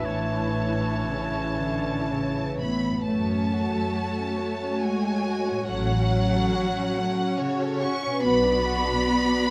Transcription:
0.00 3.09 A2 soft
0.00 2.69 E3 soft
0.00 1.11 D4 soft
0.00 0.82 E4 soft
0.00 2.81 E4 soft
0.04 2.82 A1 soft
0.04 0.98 A2 soft
0.04 2.81 E3 soft
0.04 2.60 C#5 soft
0.04 2.83 C#5 soft
0.04 2.56 A5 medium
0.31 2.35 E3 soft
0.57 2.58 C#4 soft
0.84 2.10 E4 soft
1.09 1.57 C#3 soft
1.09 2.73 C#4 soft
1.09 1.60 A4 soft
1.35 1.85 C#5 soft
1.61 2.10 D3 medium
1.86 3.01 C#5 soft
2.10 2.60 C#3 soft
2.10 3.10 E4 soft
2.36 2.82 E3 soft
2.59 3.06 A2 soft
2.59 3.03 B3 medium
2.59 2.92 C#4 soft
2.59 3.03 B5 medium
2.83 3.09 E3 soft
2.88 5.63 F#2 soft
2.93 5.54 C#4 soft
2.93 5.59 F#4 soft
3.02 5.63 C#5 soft
3.06 3.80 F#2 medium
3.06 4.82 A3 medium
3.06 5.66 A3 soft
3.06 3.28 A3 soft
3.06 8.21 F#4 soft
3.06 8.22 C#5 soft
3.06 4.82 A5 medium
3.30 3.51 C#4 soft
3.52 3.73 F#4 soft
3.74 3.95 A4 soft
3.95 4.16 F#4 soft
4.17 4.39 C#4 soft
4.39 4.60 A3 soft
4.62 4.83 C#4 soft
4.81 5.69 G#3 medium
4.81 5.04 F#4 medium
4.81 5.69 G#5 medium
5.04 5.26 A4 soft
5.25 5.47 F#4 soft
5.47 5.69 C#4 soft
5.51 8.18 A2 soft
5.55 8.21 C#4 soft
5.60 8.14 F#4 soft
5.64 5.88 A3 soft
5.64 8.25 C#5 soft
5.64 7.37 F#5 medium
5.69 6.42 A1 medium
5.69 7.41 F#3 medium
5.69 8.20 C#4 medium
5.90 6.12 C#4 soft
6.10 6.33 F#4 soft
6.32 6.55 A4 soft
6.55 6.77 F#4 soft
6.78 6.99 C#4 soft
6.98 7.19 A3 soft
7.20 7.41 C#4 medium
7.39 7.82 C#3 medium
7.39 7.61 F#4 medium
7.39 7.83 C#5 medium
7.62 7.83 A4 medium
7.82 8.24 C#4 medium
7.82 8.03 F#4 medium
7.82 8.24 C#6 medium
8.02 8.23 C#4 soft
8.06 9.50 B2 medium
8.10 9.50 D4 soft
8.15 9.50 F#4 soft
8.19 8.42 B3 medium
8.19 9.50 B3 medium
8.19 9.50 F#4 medium
8.19 9.50 B4 soft
8.19 9.50 D5 medium
8.24 8.93 B1 medium
8.24 9.50 B5 loud
8.43 8.64 D4 medium
8.64 8.85 F#4 medium
8.85 9.06 D4 medium
9.07 9.28 B3 medium
9.27 9.48 D4 medium

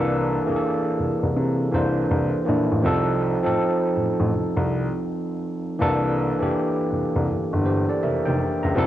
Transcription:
0.00 0.37 C2 loud
0.00 0.36 E3 loud
0.00 0.37 A#3 loud
0.00 0.37 D4 loud
0.00 0.38 A4 loud
0.46 0.54 C2 soft
0.46 1.58 E3 medium
0.46 1.58 A#3 medium
0.46 1.59 D4 medium
0.46 0.53 G#4 medium
0.56 1.63 A4 medium
0.99 1.08 C2 soft
1.23 1.35 C2 medium
1.36 1.66 C3 medium
1.71 2.03 C2 medium
1.71 2.38 E3 medium
1.71 2.38 A#3 medium
1.71 2.39 D4 medium
1.71 2.39 C5 medium
2.11 2.29 C2 medium
2.45 2.66 A#1 medium
2.45 2.78 E3 medium
2.45 2.79 A#3 medium
2.45 2.79 D4 medium
2.45 2.80 E4 medium
2.72 2.81 A1 medium
2.82 3.34 C2 medium
2.82 3.33 F3 loud
2.82 3.33 C4 medium
2.82 3.34 D#4 medium
2.82 3.35 A4 loud
3.43 3.50 A1 soft
3.43 4.66 F3 medium
3.43 4.66 C4 medium
3.43 4.67 D#4 medium
3.43 4.67 A4 medium
3.96 4.05 A1 soft
4.20 4.30 A1 medium
4.33 4.42 C2 soft
4.57 4.86 C2 loud
5.79 6.30 C2 loud
5.79 6.29 E3 loud
5.79 6.30 A#3 loud
5.79 6.30 D4 medium
5.79 6.31 A4 loud
6.39 6.46 C2 soft
6.39 7.51 E3 medium
6.39 7.51 A#3 medium
6.39 7.52 D4 medium
6.39 7.52 G4 medium
6.92 7.01 C2 soft
7.16 7.26 C2 medium
7.29 7.38 G1 soft
7.53 7.82 G1 medium
7.65 7.87 G4 medium
7.65 7.87 C5 medium
7.89 8.01 A4 medium
7.89 8.01 D5 medium
8.03 8.12 F1 soft
8.03 8.24 A#4 medium
8.03 8.24 E5 medium
8.25 8.37 F1 medium
8.25 8.60 D5 medium
8.25 8.60 G5 medium
8.63 8.74 C#2 medium
8.63 8.87 E5 soft
8.63 8.87 A#5 medium
8.75 8.87 C2 loud
8.75 8.87 F3 loud
8.75 8.87 C4 loud
8.75 8.87 D#4 loud
8.75 8.87 A4 loud

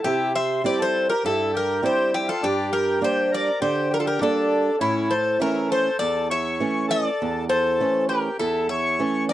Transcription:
0.04 0.62 C3 medium
0.04 0.32 E4 medium
0.04 0.32 G4 medium
0.35 0.62 C5 medium
0.35 0.63 E5 loud
0.64 1.12 G3 soft
0.64 1.12 C4 soft
0.64 1.12 E4 soft
0.64 0.78 G4 medium
0.64 0.79 D5 medium
0.79 1.06 A4 medium
0.79 1.08 C5 medium
1.09 1.23 G4 medium
1.09 1.24 A#4 medium
1.24 1.82 G2 medium
1.24 1.52 E4 medium
1.24 1.55 A4 medium
1.53 1.81 G4 medium
1.53 1.85 A#4 medium
1.82 2.30 G3 soft
1.82 2.31 C4 soft
1.82 2.31 E4 medium
1.82 2.11 G4 medium
1.82 2.12 C5 medium
2.13 2.27 E4 medium
2.13 2.28 G4 loud
2.28 2.42 F4 medium
2.28 2.44 A4 medium
2.42 3.01 G2 medium
2.42 2.70 D4 medium
2.42 2.71 G4 medium
2.71 2.99 G4 medium
2.71 3.03 A#4 medium
3.01 3.49 G3 soft
3.01 3.50 A#3 soft
3.01 3.50 D4 medium
3.01 3.30 G4 medium
3.01 3.31 C5 medium
3.32 3.60 A#4 medium
3.32 3.61 D5 medium
3.61 4.20 D3 medium
3.61 3.89 G4 medium
3.61 3.93 C5 medium
3.90 3.97 G4 medium
3.90 4.00 A#4 medium
3.98 4.05 F4 medium
3.98 4.06 A4 medium
4.05 4.20 G4 medium
4.05 4.22 A#4 medium
4.19 4.69 G3 medium
4.19 4.69 A#3 soft
4.19 4.76 D4 medium
4.19 4.70 D4 medium
4.19 4.78 A4 medium
4.80 5.39 A2 medium
4.80 5.08 C#4 medium
4.80 5.12 E4 medium
5.09 5.38 A4 medium
5.09 5.39 C5 medium
5.40 5.88 E3 soft
5.40 5.88 A3 soft
5.40 5.89 C#4 medium
5.40 5.68 E4 medium
5.40 5.71 A#4 medium
5.69 5.97 A4 medium
5.69 5.99 C5 medium
5.99 6.59 E2 medium
5.99 6.28 A4 medium
5.99 6.28 D5 medium
6.30 6.86 C#5 medium
6.30 6.90 E5 medium
6.60 7.08 E3 medium
6.60 7.08 A3 soft
6.60 7.08 C#4 medium
6.88 7.45 A4 medium
6.88 7.49 D5 loud
7.22 7.79 E2 medium
7.49 8.05 A4 medium
7.49 8.05 C5 medium
7.80 8.28 E3 soft
7.80 8.28 A3 soft
7.80 8.28 C#4 medium
8.09 8.37 G4 medium
8.09 8.37 A#4 medium
8.39 8.98 E2 medium
8.39 8.67 E4 medium
8.39 8.67 A4 medium
8.69 9.25 C#5 medium
8.69 9.25 E5 medium
8.99 9.33 E3 soft
8.99 9.33 A3 soft
8.99 9.33 C#4 medium
9.29 9.33 D5 medium

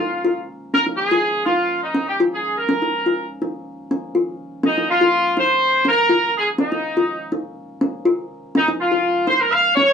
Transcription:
0.00 0.44 F4 medium
0.25 0.33 F4 medium
0.74 0.82 C#4 medium
0.74 0.85 A#4 loud
0.86 0.94 D#4 medium
0.97 1.43 G#4 loud
1.11 1.19 F4 medium
1.45 1.54 D#4 medium
1.45 1.81 F4 medium
1.83 2.06 D#4 medium
1.95 2.03 C#4 medium
2.09 2.20 G4 medium
2.20 2.28 F4 medium
2.34 2.56 G#4 medium
2.58 3.27 A#4 medium
2.69 2.77 C#4 medium
2.82 2.90 D#4 medium
3.06 3.14 F4 medium
3.42 3.50 D#4 medium
3.91 3.99 C#4 medium
4.15 4.23 F4 medium
4.63 4.71 C#4 medium
4.63 4.88 D#4 medium
4.78 4.86 D#4 medium
4.90 5.35 F4 loud
5.01 5.09 F4 medium
5.37 5.45 D#4 medium
5.37 5.87 C5 loud
5.85 5.93 C#4 medium
5.85 6.33 A#4 loud
6.09 6.17 F4 medium
6.38 6.48 G#4 medium
6.58 6.66 C#4 medium
6.58 7.29 D#4 medium
6.72 6.80 D#4 medium
6.97 7.05 F4 medium
7.32 7.40 D#4 medium
7.81 7.89 C#4 medium
8.05 8.13 F4 medium
8.55 8.63 C#4 medium
8.55 8.67 D#4 medium
8.68 8.76 D#4 medium
8.80 9.25 F4 medium
8.92 9.00 F4 medium
9.27 9.35 D#4 medium
9.27 9.40 C5 loud
9.41 9.52 A#4 loud
9.52 9.76 F5 loud
9.75 9.85 C#4 medium
9.75 9.93 C#5 loud

